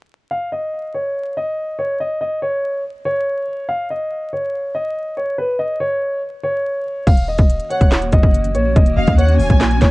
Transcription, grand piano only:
0, 0, Header, 1, 2, 480
1, 0, Start_track
1, 0, Key_signature, -6, "minor"
1, 0, Tempo, 422535
1, 351, Time_signature, 4, 2, 24, 8
1, 11255, End_track
2, 0, Start_track
2, 0, Title_t, "Grand piano"
2, 0, Program_c, 0, 0
2, 351, Note_on_c, 0, 77, 82
2, 551, Note_off_c, 0, 77, 0
2, 592, Note_on_c, 0, 75, 72
2, 1043, Note_off_c, 0, 75, 0
2, 1072, Note_on_c, 0, 73, 65
2, 1523, Note_off_c, 0, 73, 0
2, 1556, Note_on_c, 0, 75, 83
2, 2005, Note_off_c, 0, 75, 0
2, 2030, Note_on_c, 0, 73, 77
2, 2230, Note_off_c, 0, 73, 0
2, 2275, Note_on_c, 0, 75, 82
2, 2473, Note_off_c, 0, 75, 0
2, 2509, Note_on_c, 0, 75, 80
2, 2710, Note_off_c, 0, 75, 0
2, 2750, Note_on_c, 0, 73, 82
2, 3202, Note_off_c, 0, 73, 0
2, 3468, Note_on_c, 0, 73, 84
2, 4146, Note_off_c, 0, 73, 0
2, 4188, Note_on_c, 0, 77, 93
2, 4389, Note_off_c, 0, 77, 0
2, 4434, Note_on_c, 0, 75, 79
2, 4884, Note_off_c, 0, 75, 0
2, 4916, Note_on_c, 0, 73, 68
2, 5365, Note_off_c, 0, 73, 0
2, 5392, Note_on_c, 0, 75, 82
2, 5843, Note_off_c, 0, 75, 0
2, 5873, Note_on_c, 0, 73, 74
2, 6072, Note_off_c, 0, 73, 0
2, 6115, Note_on_c, 0, 71, 85
2, 6313, Note_off_c, 0, 71, 0
2, 6351, Note_on_c, 0, 75, 86
2, 6551, Note_off_c, 0, 75, 0
2, 6592, Note_on_c, 0, 73, 86
2, 7043, Note_off_c, 0, 73, 0
2, 7310, Note_on_c, 0, 73, 84
2, 7987, Note_off_c, 0, 73, 0
2, 8033, Note_on_c, 0, 77, 93
2, 8232, Note_off_c, 0, 77, 0
2, 8273, Note_on_c, 0, 75, 77
2, 8723, Note_off_c, 0, 75, 0
2, 8751, Note_on_c, 0, 73, 68
2, 9202, Note_off_c, 0, 73, 0
2, 9236, Note_on_c, 0, 75, 92
2, 9685, Note_off_c, 0, 75, 0
2, 9709, Note_on_c, 0, 73, 84
2, 9910, Note_off_c, 0, 73, 0
2, 9953, Note_on_c, 0, 75, 86
2, 10152, Note_off_c, 0, 75, 0
2, 10187, Note_on_c, 0, 75, 84
2, 10388, Note_off_c, 0, 75, 0
2, 10429, Note_on_c, 0, 73, 86
2, 10881, Note_off_c, 0, 73, 0
2, 11149, Note_on_c, 0, 73, 92
2, 11255, Note_off_c, 0, 73, 0
2, 11255, End_track
0, 0, End_of_file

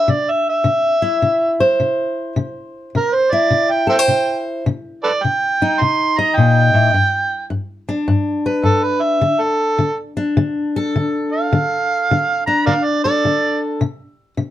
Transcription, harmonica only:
0, 0, Header, 1, 2, 480
1, 0, Start_track
1, 0, Tempo, 571973
1, 64, Time_signature, 4, 2, 24, 8
1, 12173, End_track
2, 0, Start_track
2, 0, Title_t, "Harmonica"
2, 0, Program_c, 0, 22
2, 0, Note_on_c, 0, 76, 92
2, 85, Note_on_c, 0, 74, 83
2, 97, Note_off_c, 0, 76, 0
2, 258, Note_on_c, 0, 76, 79
2, 271, Note_off_c, 0, 74, 0
2, 396, Note_off_c, 0, 76, 0
2, 415, Note_on_c, 0, 76, 88
2, 1328, Note_off_c, 0, 76, 0
2, 2489, Note_on_c, 0, 70, 100
2, 2639, Note_on_c, 0, 72, 85
2, 2652, Note_off_c, 0, 70, 0
2, 2785, Note_on_c, 0, 74, 81
2, 2798, Note_off_c, 0, 72, 0
2, 3114, Note_on_c, 0, 79, 92
2, 3126, Note_off_c, 0, 74, 0
2, 3261, Note_off_c, 0, 79, 0
2, 3267, Note_on_c, 0, 72, 60
2, 3267, Note_on_c, 0, 76, 60
2, 3267, Note_on_c, 0, 79, 85
2, 3322, Note_off_c, 0, 76, 0
2, 3324, Note_off_c, 0, 72, 0
2, 3728, Note_off_c, 0, 79, 0
2, 4226, Note_on_c, 0, 69, 65
2, 4226, Note_on_c, 0, 71, 65
2, 4226, Note_on_c, 0, 74, 93
2, 4282, Note_off_c, 0, 69, 0
2, 4293, Note_off_c, 0, 71, 0
2, 4390, Note_on_c, 0, 79, 101
2, 4402, Note_off_c, 0, 74, 0
2, 4877, Note_on_c, 0, 84, 85
2, 4890, Note_off_c, 0, 79, 0
2, 5184, Note_on_c, 0, 82, 87
2, 5196, Note_off_c, 0, 84, 0
2, 5338, Note_on_c, 0, 79, 117
2, 5351, Note_off_c, 0, 82, 0
2, 6269, Note_off_c, 0, 79, 0
2, 7257, Note_on_c, 0, 69, 91
2, 7412, Note_on_c, 0, 71, 83
2, 7425, Note_off_c, 0, 69, 0
2, 7573, Note_on_c, 0, 76, 77
2, 7585, Note_off_c, 0, 71, 0
2, 7903, Note_on_c, 0, 69, 94
2, 7916, Note_off_c, 0, 76, 0
2, 8366, Note_off_c, 0, 69, 0
2, 9502, Note_on_c, 0, 77, 90
2, 10432, Note_off_c, 0, 77, 0
2, 10457, Note_on_c, 0, 82, 79
2, 10613, Note_off_c, 0, 82, 0
2, 10625, Note_on_c, 0, 70, 60
2, 10625, Note_on_c, 0, 74, 60
2, 10625, Note_on_c, 0, 77, 86
2, 10691, Note_off_c, 0, 74, 0
2, 10697, Note_off_c, 0, 70, 0
2, 10777, Note_on_c, 0, 74, 89
2, 10790, Note_off_c, 0, 77, 0
2, 10934, Note_off_c, 0, 74, 0
2, 10944, Note_on_c, 0, 74, 95
2, 11408, Note_off_c, 0, 74, 0
2, 12173, End_track
0, 0, End_of_file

